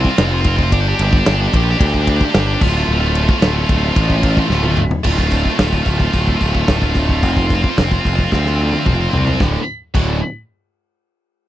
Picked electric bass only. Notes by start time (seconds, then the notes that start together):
0.18 F1
0.72 G1
0.99 G1
1.26 G1
1.54 A#1
1.80 D2
2.35 G1
2.62 D1
2.89 D1
3.43 D1
3.70 D1
3.97 A1
4.50 D1
5.05 D1
5.59 D1
5.86 D1
6.14 D1
6.41 D1
6.68 D1
7.23 F1
7.78 F1
8.05 F1
8.32 D2
8.86 F1
9.13 C2
9.40 D1
9.95 D1